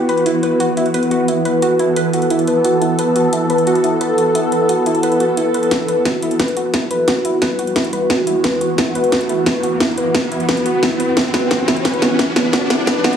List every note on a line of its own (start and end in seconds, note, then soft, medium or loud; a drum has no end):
0.00 5.67 E3 medium
0.00 5.67 B3 medium
0.00 0.24 F#4 medium
0.09 0.13 B4 medium
0.09 closed hi-hat medium
0.17 closed hi-hat soft
0.26 0.36 E4 medium
0.26 5.69 A4 medium
0.26 closed hi-hat medium
0.43 0.53 B4 medium
0.43 closed hi-hat medium
0.60 0.67 F#4 medium
0.60 closed hi-hat medium
0.77 0.87 E4 medium
0.77 closed hi-hat medium
0.86 closed hi-hat soft
0.94 1.04 B4 medium
0.94 closed hi-hat medium
1.03 closed hi-hat soft
1.11 1.18 F#4 medium
1.11 closed hi-hat medium
1.28 1.38 E4 medium
1.28 closed hi-hat medium
1.45 1.55 B4 medium
1.45 closed hi-hat medium
1.62 1.69 F#4 medium
1.62 closed hi-hat medium
1.79 1.89 E4 medium
1.79 closed hi-hat medium
1.96 2.06 B4 medium
1.96 closed hi-hat medium
2.13 2.20 F#4 medium
2.13 closed hi-hat medium
2.22 closed hi-hat soft
2.30 2.40 E4 medium
2.30 closed hi-hat medium
2.39 closed hi-hat soft
2.47 2.57 B4 medium
2.47 closed hi-hat medium
2.65 2.71 F#4 medium
2.65 closed hi-hat medium
2.82 2.91 E4 medium
2.82 closed hi-hat medium
2.99 3.09 B4 medium
2.99 closed hi-hat loud
3.16 3.22 F#4 medium
3.16 closed hi-hat medium
3.33 3.43 E4 medium
3.33 closed hi-hat medium
3.50 3.60 B4 medium
3.50 closed hi-hat medium
3.58 closed hi-hat soft
3.67 3.73 F#4 medium
3.67 closed hi-hat medium
3.75 closed hi-hat soft
3.84 3.94 E4 medium
3.84 closed hi-hat medium
4.01 4.11 B4 medium
4.01 closed hi-hat medium
4.18 4.25 F#4 medium
4.18 closed hi-hat medium
4.35 4.45 E4 medium
4.35 closed hi-hat loud
4.52 4.62 B4 medium
4.52 closed hi-hat medium
4.69 4.76 F#4 medium
4.69 closed hi-hat loud
4.86 4.96 E4 medium
4.86 closed hi-hat medium
4.95 closed hi-hat soft
5.03 5.13 B4 medium
5.03 closed hi-hat medium
5.12 closed hi-hat soft
5.20 5.27 F#4 medium
5.20 closed hi-hat medium
5.37 5.47 E4 medium
5.37 closed hi-hat loud
5.54 5.64 B4 medium
5.54 closed hi-hat medium
5.63 closed hi-hat soft
5.71 13.17 E3 medium
5.71 13.17 B3 medium
5.71 5.81 E4 medium
5.71 11.15 F#4 medium
5.71 kick medium
5.71 snare soft
5.71 closed hi-hat loud
5.71 riser medium
5.88 5.98 B4 medium
5.88 closed hi-hat medium
6.05 6.12 F#4 medium
6.05 kick loud
6.05 snare medium
6.05 closed hi-hat loud
6.22 6.32 E4 medium
6.22 closed hi-hat medium
6.31 closed hi-hat soft
6.40 6.49 B4 medium
6.40 kick loud
6.40 snare soft
6.40 closed hi-hat medium
6.48 closed hi-hat soft
6.57 6.63 F#4 medium
6.57 closed hi-hat medium
6.74 6.83 E4 medium
6.74 kick loud
6.74 snare soft
6.74 closed hi-hat medium
6.91 7.01 B4 medium
6.91 closed hi-hat medium
7.08 7.14 F#4 medium
7.08 kick medium
7.08 snare medium
7.08 closed hi-hat medium
7.25 7.35 E4 medium
7.25 closed hi-hat medium
7.42 7.52 B4 medium
7.42 kick loud
7.42 snare medium
7.42 closed hi-hat medium
7.59 7.65 F#4 medium
7.59 closed hi-hat medium
7.67 closed hi-hat soft
7.76 7.86 E4 medium
7.76 kick medium
7.76 snare medium
7.76 closed hi-hat medium
7.84 closed hi-hat soft
7.93 8.03 B4 medium
7.93 closed hi-hat medium
8.10 8.17 F#4 medium
8.10 kick loud
8.10 snare medium
8.10 closed hi-hat medium
8.27 8.37 E4 medium
8.27 closed hi-hat medium
8.44 8.54 B4 medium
8.44 kick loud
8.44 snare medium
8.44 closed hi-hat medium
8.61 8.68 F#4 medium
8.61 closed hi-hat medium
8.78 8.88 E4 medium
8.78 kick loud
8.78 snare medium
8.78 closed hi-hat medium
8.95 9.05 B4 medium
8.95 closed hi-hat medium
9.04 closed hi-hat soft
9.12 9.19 F#4 medium
9.12 kick loud
9.12 snare medium
9.12 closed hi-hat medium
9.21 closed hi-hat soft
9.29 9.39 E4 medium
9.29 closed hi-hat medium
9.46 9.56 B4 medium
9.46 kick loud
9.46 snare medium
9.46 closed hi-hat medium
9.63 9.70 F#4 medium
9.63 closed hi-hat medium
9.80 9.90 E4 medium
9.80 kick medium
9.80 snare medium
9.80 closed hi-hat medium
9.98 10.07 B4 medium
9.98 closed hi-hat medium
10.15 10.21 F#4 medium
10.15 kick loud
10.15 snare medium
10.15 closed hi-hat medium
10.32 10.41 E4 medium
10.32 closed hi-hat medium
10.40 closed hi-hat soft
10.49 10.58 B4 medium
10.49 kick loud
10.49 snare medium
10.49 closed hi-hat medium
10.57 closed hi-hat soft
10.66 10.72 F#4 medium
10.66 closed hi-hat medium
10.83 10.93 E4 medium
10.83 kick loud
10.83 snare medium
10.83 closed hi-hat medium
11.00 11.10 B4 medium
11.00 closed hi-hat medium
11.17 11.27 E4 medium
11.17 13.17 E4 medium
11.17 kick medium
11.17 snare medium
11.17 closed hi-hat medium
11.34 11.44 B4 medium
11.34 snare medium
11.34 closed hi-hat medium
11.51 11.57 F#4 medium
11.51 kick loud
11.51 snare medium
11.51 closed hi-hat medium
11.68 11.78 E4 medium
11.68 snare medium
11.68 closed hi-hat medium
11.77 closed hi-hat soft
11.85 11.95 B4 medium
11.85 kick loud
11.85 snare medium
11.85 closed hi-hat medium
11.94 closed hi-hat soft
12.02 12.09 F#4 medium
12.02 snare medium
12.02 closed hi-hat medium
12.19 12.29 E4 medium
12.19 kick loud
12.19 snare medium
12.19 closed hi-hat medium
12.36 12.46 B4 medium
12.36 snare medium
12.36 closed hi-hat medium
12.53 12.60 F#4 medium
12.53 kick loud
12.53 snare medium
12.53 closed hi-hat loud
12.70 12.80 E4 medium
12.70 snare medium
12.70 closed hi-hat medium
12.87 12.97 B4 medium
12.87 kick loud
12.87 snare medium
12.87 closed hi-hat medium
13.04 13.11 F#4 medium
13.04 snare medium
13.04 closed hi-hat medium
13.13 closed hi-hat soft